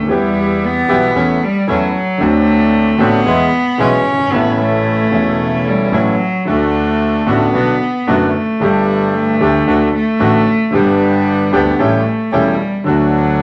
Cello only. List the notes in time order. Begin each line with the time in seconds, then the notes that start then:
Already playing: A3
0.12 G3
0.64 B3
1.43 G3
1.70 F#3
2.21 A3
3.01 B3
3.80 C#4
4.32 B3
4.60 A3
5.67 G3
5.95 F#3
6.47 A3
7.27 B3
8.07 A3
8.63 G3
9.15 A3
9.95 A3
10.75 G3
11.53 B3
11.79 A3
12.33 G3
12.87 F#3